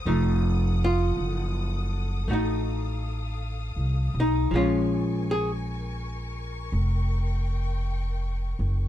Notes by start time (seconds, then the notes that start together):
Already playing: D#6
0.05 F1 F3 A3 D#4 A4 F#5
0.84 F4
1.17 F#1
2.26 A1 A3 D#4 F5
2.31 D#4 F#4
3.76 C2
4.14 B1
4.20 D#4
4.48 A#1 F3 A#4 G#5 C#6
4.54 G#3 C#4 F4
5.31 G#4
6.72 F1 G5
8.59 F#1